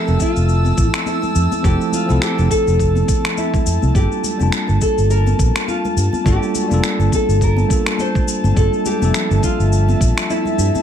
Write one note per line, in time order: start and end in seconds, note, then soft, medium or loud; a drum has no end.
0.00 1.63 F3 medium
0.00 1.63 A3 medium
0.00 1.64 C4 medium
0.00 1.65 E4 medium
0.00 0.23 G4 loud
0.00 1.66 A4 medium
0.00 1.62 E5 medium
0.00 10.82 A5 medium
0.00 3.91 E6 medium
0.08 0.16 F1 loud
0.08 high bongo medium
0.08 cabasa soft
0.20 0.82 F4 loud
0.20 kick medium
0.20 high conga medium
0.20 cabasa medium
0.36 0.70 F1 medium
0.36 cabasa soft
0.49 cabasa soft
0.65 high conga medium
0.65 cabasa soft
0.78 0.88 A1 medium
0.78 1.07 E4 loud
0.78 kick loud
0.78 cabasa medium
0.94 finger snap medium
0.94 cabasa soft
1.06 1.66 E4 medium
1.06 high conga medium
1.06 cabasa soft
1.22 high bongo soft
1.22 low conga medium
1.22 cabasa soft
1.35 1.46 F2 loud
1.35 cabasa medium
1.52 high conga medium
1.52 low conga medium
1.52 cabasa soft
1.63 1.75 F1 loud
1.63 2.04 F3 loud
1.63 2.05 A3 medium
1.63 2.06 C4 medium
1.63 2.06 E4 medium
1.63 1.94 G4 loud
1.63 2.06 A4 loud
1.63 kick loud
1.63 high bongo medium
1.63 cabasa soft
1.81 cabasa soft
1.92 2.23 F4 medium
1.92 low conga medium
1.92 cabasa medium
2.06 3.04 F3 medium
2.06 3.04 A3 medium
2.06 3.05 C4 medium
2.06 high conga medium
2.10 2.17 C2 medium
2.10 3.06 E4 medium
2.10 3.07 A4 loud
2.10 cabasa soft
2.22 2.51 G4 medium
2.22 finger snap medium
2.22 cabasa soft
2.38 2.46 F1 medium
2.38 high bongo medium
2.38 cabasa soft
2.51 3.40 A4 loud
2.51 kick medium
2.51 cabasa medium
2.67 3.01 F1 medium
2.67 cabasa soft
2.79 kick medium
2.79 cabasa soft
2.95 high conga medium
2.95 cabasa soft
3.08 kick loud
3.08 cabasa medium
3.25 finger snap medium
3.25 cabasa soft
3.37 3.97 E4 medium
3.37 high conga medium
3.37 cabasa soft
3.54 kick loud
3.54 high bongo soft
3.54 low conga medium
3.54 cabasa soft
3.66 3.77 F2 medium
3.66 cabasa medium
3.82 3.90 C2 loud
3.82 high conga medium
3.82 low conga medium
3.82 cabasa soft
3.94 4.05 G1 loud
3.94 4.36 G3 medium
3.94 4.36 A#3 medium
3.94 4.36 D4 medium
3.94 4.37 F4 medium
3.94 4.49 G4 medium
3.94 4.37 A4 medium
3.94 kick loud
3.94 cabasa soft
4.12 cabasa soft
4.24 low conga medium
4.24 cabasa medium
4.37 4.48 F1 medium
4.37 6.21 G3 medium
4.37 6.22 A#3 medium
4.37 6.23 D4 medium
4.37 high conga medium
4.37 cabasa soft
4.42 6.24 F4 medium
4.42 6.24 A5 medium
4.52 finger snap medium
4.52 cabasa soft
4.68 4.77 G1 medium
4.68 high bongo medium
4.68 cabasa soft
4.81 5.09 A4 loud
4.81 kick medium
4.81 cabasa medium
4.98 5.32 G1 medium
4.98 cabasa soft
5.10 5.64 A#4 loud
5.10 cabasa soft
5.26 high conga medium
5.26 cabasa soft
5.39 5.50 A#1 medium
5.39 kick loud
5.39 cabasa medium
5.56 finger snap medium
5.56 cabasa soft
5.68 6.28 F4 medium
5.68 high conga medium
5.68 cabasa soft
5.85 high bongo soft
5.85 low conga medium
5.85 cabasa soft
5.97 6.07 G2 loud
5.97 cabasa medium
6.13 high conga medium
6.13 low conga medium
6.13 cabasa soft
6.24 6.36 G1 loud
6.24 6.66 G3 loud
6.24 6.67 A#3 medium
6.24 6.67 D4 medium
6.24 6.68 F4 medium
6.24 6.68 G4 medium
6.24 6.68 A4 loud
6.24 kick loud
6.24 high bongo medium
6.24 cabasa soft
6.43 cabasa soft
6.55 low conga medium
6.55 cabasa medium
6.68 6.79 F1 medium
6.68 7.65 G3 loud
6.68 7.66 A#3 medium
6.68 7.67 D4 medium
6.68 6.80 F4 medium
6.68 high conga medium
6.68 cabasa soft
6.72 7.68 F4 medium
6.72 7.68 A4 loud
6.84 finger snap medium
6.84 cabasa soft
6.99 7.07 G1 loud
6.99 high bongo medium
6.99 cabasa soft
7.12 7.43 A4 medium
7.12 kick medium
7.12 high conga medium
7.12 cabasa medium
7.28 7.63 G1 medium
7.28 cabasa soft
7.41 8.00 A#4 loud
7.41 kick medium
7.41 cabasa soft
7.57 high conga loud
7.57 cabasa soft
7.66 8.52 G3 medium
7.66 8.53 A#3 medium
7.66 8.53 D4 medium
7.66 kick loud
7.71 8.54 F4 medium
7.71 8.55 A4 medium
7.71 cabasa medium
7.86 finger snap medium
7.86 cabasa soft
7.98 8.57 C5 loud
7.98 high conga medium
7.98 cabasa soft
8.15 kick loud
8.15 high bongo medium
8.15 low conga medium
8.15 cabasa soft
8.28 cabasa medium
8.44 8.52 G1 medium
8.44 high conga loud
8.44 low conga medium
8.44 cabasa soft
8.55 8.67 G1 loud
8.55 8.97 G3 medium
8.55 8.97 A#3 medium
8.55 8.98 D4 medium
8.55 8.98 F4 medium
8.55 8.86 A4 loud
8.55 8.99 A4 medium
8.55 10.82 E5 medium
8.55 kick loud
8.55 cabasa soft
8.73 cabasa soft
8.85 9.39 G4 medium
8.85 low conga medium
8.85 cabasa medium
8.99 9.10 F1 medium
8.99 10.82 G3 medium
8.99 10.82 A#3 medium
8.99 10.82 D4 medium
8.99 high conga loud
8.99 cabasa soft
9.03 10.82 F3 medium
9.03 10.82 A4 medium
9.14 finger snap medium
9.14 cabasa soft
9.31 9.38 G1 loud
9.31 high bongo medium
9.31 cabasa soft
9.43 10.26 F4 loud
9.43 kick medium
9.43 high conga medium
9.43 cabasa medium
9.59 9.93 G1 medium
9.59 cabasa soft
9.72 cabasa soft
9.89 high conga medium
9.89 cabasa soft
10.01 10.11 A#1 medium
10.01 kick loud
10.01 cabasa medium
10.18 finger snap medium
10.18 cabasa soft
10.30 10.82 E4 loud
10.30 high conga medium
10.30 cabasa soft
10.45 high bongo soft
10.45 low conga medium
10.45 cabasa soft
10.58 10.69 G2 medium
10.58 cabasa medium
10.75 high conga loud
10.75 low conga medium
10.75 cabasa soft